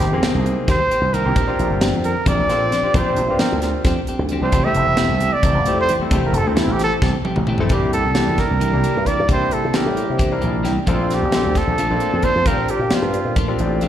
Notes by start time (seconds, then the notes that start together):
Already playing: G4
0.00 G#1, snare, closed hi-hat
0.12 F2 A#3 C4 D#4 G#4
0.23 D#3 A#3 C4 G4, snare, closed hi-hat
0.35 C2
0.46 closed hi-hat
0.68 D#2 D#3 A#3 C4 G4 C5, kick, snare, closed hi-hat
0.91 A#3 C4 G4, muted slap bass stroke, closed hi-hat
1.01 C2
1.13 D#3 A#3 C4 G4 A#4, closed hi-hat
1.25 C2 A#3 C4 D#4 G4
1.35 A#1 F3 C4 D4 G4, kick, closed hi-hat
1.47 C4 D4 F4 G4
1.59 A#1, closed hi-hat
1.70 G1
1.81 F3 C4 D4 G4, snare, closed hi-hat
1.93 F2
2.04 A#4, closed hi-hat
2.26 A#1 F3 C4 D4 G4 D5, kick, closed hi-hat
2.39 A#1
2.49 A#2 C4 D4 F4 G4 A4, snare, closed hi-hat
2.72 F3 C4 D4 G4, snare, closed hi-hat
2.83 C4 D4 F4 G4, muted slap bass stroke
2.94 A#1 F3 C4 D4 F4 G4 C5, kick, closed hi-hat
3.17 A#1, closed hi-hat
3.28 G2 C4 D4 F4 G4
3.39 F3 C4 D4 G4 A#4, snare, closed hi-hat
3.52 D2
3.62 snare, closed hi-hat
3.84 F2 F3 C4 D4 G4, kick, snare, closed hi-hat
4.07 C4 D4 G4, muted slap bass stroke, closed hi-hat
4.19 D2
4.29 F3 C4 D4 G4, closed hi-hat
4.41 C2 C4 D4 F4 G4 C5
4.52 F1 E3 A3 C4 G4, kick, closed hi-hat
4.65 A3 C4 E4 G4 E5
4.75 F1, closed hi-hat
4.86 E1
4.97 E3 A3 C4 G4, snare, closed hi-hat
5.10 C2
5.20 A3 C4 G4, closed hi-hat
5.33 D5
5.43 F1 E3 A3 C4 G4, kick, closed hi-hat
5.54 F1
5.65 F2 A3 C4 E4 G4, closed hi-hat
5.81 C5
5.89 E3 A3 C4 G4, closed hi-hat
5.99 A3 C4 E4 A4, muted slap bass stroke
6.11 F1 E3 A3 C4 E4 G4, kick, closed hi-hat
6.26 A#4
6.33 F1 A4, closed hi-hat
6.45 D2 A3 C4 E4 A4
6.56 E3 A3 C4 E4 G4, snare, closed hi-hat
6.67 A1
6.72 G4
6.79 snare, closed hi-hat
6.84 A4
7.02 C2 E3 A3 C4 G4, kick, snare
7.25 A3 C4 G4, muted slap bass stroke, high tom
7.36 A1, mid tom
7.47 E3 A3 C4 G4, mid tom
7.58 A1 A3 C4 E4 A4, floor tom
7.69 C2 C3 E3 G3 A#3 D4 E4 G4, kick, closed hi-hat
7.93 A4, closed hi-hat
8.05 C2
8.15 E3 A#3 D4 E4 G4, snare, closed hi-hat
8.28 E2
8.38 A#3 D4 G4 A#4, kick, snare, closed hi-hat
8.51 C2
8.60 E3 A#3 D4 G4, closed hi-hat
8.73 C2 A#3 D4 E4 G4
8.84 A#3 D4 G4, closed hi-hat
8.97 G2
9.06 E3 A#3 D4 G4 D5, kick, closed hi-hat
9.20 G2
9.28 C3 E3 A#3 D4 E4 G4 C5, kick, closed hi-hat
9.32 G4
9.51 A4, closed hi-hat
9.65 C3
9.73 E3 A#3 D4 E4 G4 A#4, muted slap bass stroke, snare, closed hi-hat
9.86 A2
9.96 A#3 D4 G4, closed hi-hat
10.10 C3
10.18 E3 A#3 D4 G4, kick, closed hi-hat
10.32 A#3 D4 E4 A#4
10.41 A#1 A#3 D4 G4 D5, closed hi-hat
10.63 E3 A#3 D4 G4 G5, snare, closed hi-hat
10.68 C2
10.86 A#1 F3 A3 C4 D4 F4 A4, kick, closed hi-hat
10.90 F4
11.10 G4, snare, closed hi-hat
11.23 A#1
11.32 F3 A3 C4 D4 F4 A4, snare, closed hi-hat
11.46 D2
11.55 A3 D4 F4 A4, kick, snare, closed hi-hat
11.67 A#1
11.78 F3 A3 D4 F4, closed hi-hat
11.90 A#1 A#3 C4 D4 F4
12.00 A3 D4 F4, closed hi-hat
12.13 F2
12.23 F3 A3 D4 F4 C5, kick, closed hi-hat
12.36 F2
12.46 A#2 F3 A3 C4 D4 F4 G4 A#4, kick, closed hi-hat
12.68 G4, closed hi-hat
12.79 A#2
12.90 F3 A3 C4 D4 F4 G4, muted slap bass stroke, snare, closed hi-hat
12.95 F4
13.02 G2
13.14 closed hi-hat
13.25 A#2
13.36 F3 A3 D4 F4, kick, closed hi-hat
13.48 C4 D4 F4 G4
13.59 A1 D5, closed hi-hat
13.81 A#1 F3 A3 D4 F4 F5, closed hi-hat